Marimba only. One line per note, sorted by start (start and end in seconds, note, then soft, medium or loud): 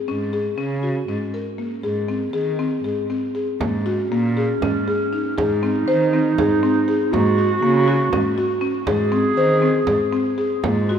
0.08 0.25 C#4 medium
0.33 0.50 G#4 medium
0.58 0.74 C#4 medium
0.83 1.00 F#4 medium
1.08 1.25 C#4 medium
1.34 1.50 A#4 medium
1.58 1.75 A#3 medium
1.83 2.00 G#4 medium
2.08 2.25 C4 medium
2.33 2.50 G#4 medium
2.59 2.76 C4 medium
2.84 3.01 G#4 medium
3.10 3.27 C4 medium
3.35 3.52 G#4 medium
3.61 3.77 A#3 medium
3.86 4.03 F#4 medium
4.12 4.28 A#3 medium
4.37 4.53 G#4 medium
4.62 4.79 C#4 medium
4.88 5.04 G#4 medium
5.13 5.29 D#4 medium
5.38 5.54 G#4 medium
5.63 5.79 C4 medium
5.88 6.04 C5 medium
6.13 6.30 C4 medium
6.39 6.55 G#4 medium
6.63 6.79 C4 medium
6.88 7.04 G#4 medium
7.13 7.29 A#3 medium
7.38 7.54 F#4 medium
7.63 7.79 A#3 medium
7.88 8.04 F#4 medium
8.13 8.29 C#4 medium
8.38 8.54 F#4 medium
8.61 8.78 C#4 medium
8.87 9.03 G#4 medium
9.12 9.28 C4 medium
9.37 9.54 C5 medium
9.62 9.79 C4 medium
9.87 10.04 G#4 medium
10.12 10.29 C4 medium
10.38 10.54 G#4 medium
10.64 10.80 A#3 medium
10.89 10.99 F#4 medium